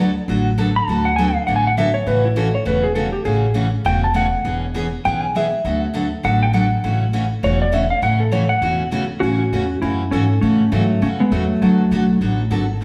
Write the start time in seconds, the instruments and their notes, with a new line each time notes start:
Already playing: upright bass D2
0.28 upright bass A1, steel-string acoustic guitar D3 F#3 B3 F#4 A4
0.58 steel-string acoustic guitar D3 F#3 B3 F#4 A4
0.76 electric slide guitar B5
0.88 upright bass D2, steel-string acoustic guitar D3 F#3 B3 F#4 A4, electric slide guitar A5
1.05 electric slide guitar F#5
1.16 steel-string acoustic guitar D3 F#3 B3 F#4 A4, electric slide guitar G#5
1.34 electric slide guitar F5
1.47 upright bass A1, steel-string acoustic guitar D3 F#3 B3 F#4 A4, electric slide guitar F#5
1.56 electric slide guitar G#5
1.67 electric slide guitar F#5
1.77 steel-string acoustic guitar D3 F#3 B3 F#4 A4, electric slide guitar E5
1.94 electric slide guitar C#5
2.06 upright bass A1, steel-string acoustic guitar C#3 E3 A3 C#4 F#4, electric slide guitar B4
2.25 electric slide guitar E4
2.36 steel-string acoustic guitar C#3 E3 A3 C#4 F#4, electric slide guitar A4
2.55 electric slide guitar C#5
2.65 upright bass E1, steel-string acoustic guitar C#3 E3 A3 C#4 F#4, electric slide guitar B4
2.84 electric slide guitar G#4
2.95 steel-string acoustic guitar C#3 E3 A3 C#4 F#4, electric slide guitar A4
3.13 electric slide guitar G4
3.25 upright bass A1, steel-string acoustic guitar C#3 E3 A3 C#4 F#4, electric slide guitar G#4
3.54 steel-string acoustic guitar C#3 E3 A3 C#4 F#4
3.85 upright bass E1, steel-string acoustic guitar C#3 E3 A3 C#4 F#4, electric slide guitar G5
4.04 electric slide guitar A5
4.14 steel-string acoustic guitar C#3 E3 A3 C#4 F#4, electric slide guitar F#5
4.45 upright bass E1, steel-string acoustic guitar E3 B3 C#4 G#4
4.74 steel-string acoustic guitar E3 B3 C#4 G#4
5.05 upright bass B1, steel-string acoustic guitar E3 B3 C#4 G#4, electric slide guitar G5
5.23 electric slide guitar G#5
5.35 steel-string acoustic guitar E3 B3 C#4 G#4, electric slide guitar E5
5.65 upright bass D2, steel-string acoustic guitar D3 F#3 B3 F#4 A4
5.94 steel-string acoustic guitar D3 F#3 B3 F#4 A4
6.23 upright bass A1, steel-string acoustic guitar D3 F#3 B3 F#4 A4, electric slide guitar F#5
6.43 electric slide guitar G5
6.53 steel-string acoustic guitar D3 F#3 B3 F#4 A4, electric slide guitar F#5
6.84 upright bass A1, steel-string acoustic guitar C#3 E3 A3 C#4 F#4
7.13 steel-string acoustic guitar C#3 E3 A3 C#4 F#4
7.43 upright bass E1, steel-string acoustic guitar C#3 E3 A3 C#4 F#4, electric slide guitar C#5
7.62 electric slide guitar D5
7.72 steel-string acoustic guitar C#3 E3 A3 C#4 F#4, electric slide guitar E5
7.90 electric slide guitar F5
8.02 upright bass A1, steel-string acoustic guitar C#3 E3 A3 C#4 F#4, electric slide guitar F#5
8.20 electric slide guitar A4
8.31 steel-string acoustic guitar C#3 E3 A3 C#4 F#4, electric slide guitar C#5
8.49 electric slide guitar F#5
8.62 upright bass E1, steel-string acoustic guitar C#3 E3 A3 C#4 F#4
8.91 steel-string acoustic guitar C#3 E3 A3 C#4 F#4
9.20 upright bass A1, steel-string acoustic guitar C#3 E3 A3 C#4 F#4, electric slide guitar C#4 F#4
9.52 upright bass E2, steel-string acoustic guitar C#3 E3 A3 C#4 F#4
9.82 upright bass F#2, steel-string acoustic guitar C#3 E3 A3 C#4 F#4, electric slide guitar C#4 E4
10.11 upright bass G#2, steel-string acoustic guitar C#3 E3 A3 C#4 F#4, electric slide guitar C#4 A4
10.41 upright bass A2, steel-string acoustic guitar C#3 E3 A3 C#4 F#4, electric slide guitar A3 C#4
10.72 upright bass G#2, steel-string acoustic guitar C#3 E3 A3 C#4 F#4, electric slide guitar F#3 A3
11.02 upright bass F#2, steel-string acoustic guitar C#3 E3 A3 C#4 F#4, electric slide guitar A3 C#4
11.20 electric slide guitar G#3 B3
11.31 upright bass E2, steel-string acoustic guitar C#3 E3 A3 C#4 F#4, electric slide guitar F#3 A3
11.61 upright bass D2, steel-string acoustic guitar D3 F#3 B3 F#4 A4, electric slide guitar F#3 A3
11.91 upright bass B1, steel-string acoustic guitar D3 F#3 B3 F#4 A4
12.21 upright bass A1, steel-string acoustic guitar D3 F#3 B3 F#4 A4
12.50 upright bass G#1, steel-string acoustic guitar D3 F#3 B3 F#4 A4
12.81 upright bass A1